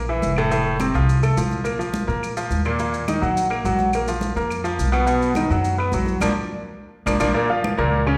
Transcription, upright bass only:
Already playing: A#1
0.23 F1
0.95 C2
1.37 A#1
2.08 A#2
2.50 D#2
3.22 A#1
3.65 A#1
4.36 F2
4.79 B1
5.50 F#2
5.93 A#1
6.21 A#1
7.06 A#1
7.20 A#1
7.78 C#2

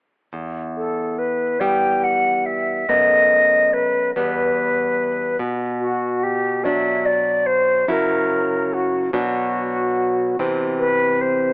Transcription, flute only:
0.77 A4
1.18 B4
1.60 G5
2.04 F#5
2.46 E5
2.89 D#5
3.73 B4
4.14 B4
5.80 F#4
6.23 G4
6.64 E5
7.06 D5
7.46 C5
7.90 A#4
8.73 F#4
9.14 F#4
10.79 B4
11.21 C5

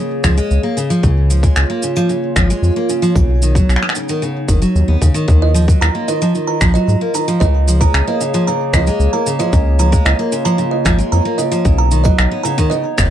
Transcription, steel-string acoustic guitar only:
Already playing: C#3
0.24 F3
0.38 G#3
0.63 A#3
0.77 C#3
0.90 F3
1.03 C#3
1.30 F3
1.43 G#3
1.70 A#3
1.83 C#3
1.97 F3
2.09 C#3
2.36 F3
2.50 G#3
2.76 A#3
2.89 C#3
3.02 F3
3.16 C#3
3.43 D#3
3.56 F#3
3.83 B3
3.96 C#3
4.09 D#3
4.22 C#3
4.49 D#3
4.62 F#3
4.88 B3
5.01 C#3
5.14 D#3
5.28 D#3
5.54 F3
5.68 F#3
5.95 A#3
6.08 D#3
6.22 F3
6.35 D#3
6.62 F3
6.75 F#3
7.01 A#3
7.14 D#3
7.28 F3
7.41 C#3
7.68 F3
7.81 G#3
8.07 A#3
8.21 C#3
8.34 F3
8.48 C#3
8.74 F3
8.87 G#3
9.13 A#3
9.26 C#3
9.40 F3
9.53 C#3
9.79 F3
9.92 G#3
10.19 A#3
10.32 C#3
10.45 F3
10.58 C#3
10.85 F3
10.98 G#3
11.25 A#3
11.38 C#3
11.52 F3
11.65 C#3
11.91 D#3
12.05 F#3
12.31 B3
12.45 C#3
12.58 D#3
12.71 C#3
12.98 B3

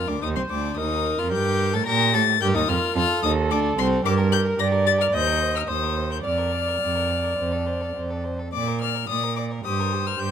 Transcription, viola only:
Already playing: A#4
0.22 C5
0.77 A#4
1.86 G4
2.41 A#4
2.95 A4
4.05 A#4
4.59 D5
5.13 D#5
5.68 C5
6.24 D5
9.65 C5

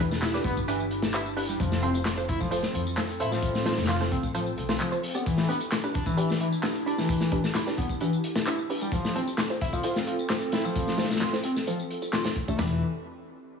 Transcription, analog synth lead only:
0.22 E4
0.45 B3
0.68 E3
1.14 E4
1.49 G3
1.60 F3
1.72 F3
1.82 C4
2.29 E4
2.40 F3
2.51 F3
2.74 F3
3.20 E4
3.32 F3
3.66 F3
3.89 F4
4.12 C4
4.34 F3
4.80 F3
5.15 B3
5.26 E3
5.38 E3
5.49 B3
5.95 D4
6.06 E3
6.17 E3
6.41 E3
6.87 D4
6.99 E3
7.32 E3
7.55 E4
7.78 B3
8.01 E3
8.47 E4
8.82 G3
8.93 F3
9.05 F3
9.16 C4
9.62 E4
9.73 F3
9.84 F3
10.07 F3
10.53 E4
10.65 F3
10.99 F3
11.22 F4
11.44 C4
11.68 F3
12.13 F4
12.48 A3
12.59 E3

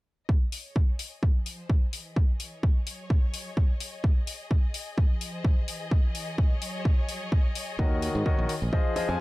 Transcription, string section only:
0.29 D#5
0.54 C#5
0.72 G#4
1.23 F3
1.55 C5
1.93 E3
2.35 C#5
2.87 F#3
4.98 F3
5.30 C5
5.68 E3
6.10 C#5
6.62 F#3
9.05 C5

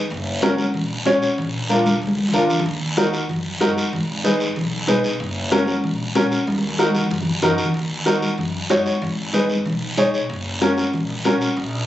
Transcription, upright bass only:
0.11 F#1
0.75 A#1
1.06 A#1
1.38 A#1
2.02 D2
2.34 D2
2.66 D#2
3.29 F#2
3.61 F#2
3.93 G#1
4.57 B1
4.88 B1
5.20 F#1
5.84 A#1
6.48 D#2
7.11 F#2
7.43 F#2
7.74 D#2
8.38 F#2
8.70 F#2
9.02 G#1
9.65 B1
9.98 B1
10.29 F#1
10.93 A#1
11.25 A#1
11.57 A#1

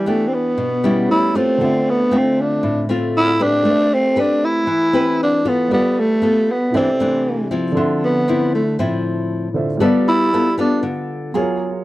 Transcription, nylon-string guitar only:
Already playing: E3
0.06 B3 D4 G4
0.58 B2
0.84 G3 C#4 E4
1.35 A3 C4 F4
1.61 D3
2.11 A3 C4 F4
2.63 A2
2.89 A3 C4 F4
3.40 C4 G4 B4
3.65 A3
4.16 C4 G4 B4
4.67 E3
4.93 C4 G4 B4
5.45 B3 F4 A4
5.71 G3
6.22 B3 F4 A4
6.74 C3 E3 A3 D4
7.00 E3 A3 D4
7.51 F3 C4 E4
7.77 D3
8.28 F3 C4 E4
8.79 A2 F3 C4 E4
9.80 G3 B3 F4 A4
10.33 B3 F4 A4
10.58 B3 F4 A4
10.83 D3
11.34 A#3 F4 G#4

